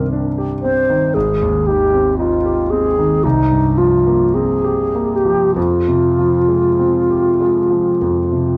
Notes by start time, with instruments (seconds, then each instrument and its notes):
Already playing: grand piano C2 G2 D#3 C4 D4 G4
0.13 grand piano D4
0.38 grand piano G4
0.62 grand piano C4, alto flute C5
0.89 grand piano D#3
1.14 grand piano G#1, alto flute G#4
1.42 grand piano D#2
1.67 grand piano D#3, alto flute G4
1.94 grand piano C4
2.18 grand piano D#4, alto flute F4
2.45 grand piano G4
2.70 grand piano C4, alto flute G#4
2.98 grand piano D#3
3.24 grand piano C2, alto flute D#4
3.52 grand piano G2
3.78 grand piano F3, alto flute F4
4.07 grand piano A#3
4.34 grand piano C4, alto flute G#4
4.64 grand piano G4
4.95 grand piano A#3
5.16 alto flute G4
5.25 grand piano F3
5.56 grand piano F2, alto flute F4
5.88 grand piano C3
6.19 grand piano F3
6.48 grand piano G#3
6.79 grand piano C4
7.10 grand piano G4
7.41 grand piano G#3
7.70 grand piano F3
8.01 grand piano F2
8.32 grand piano C3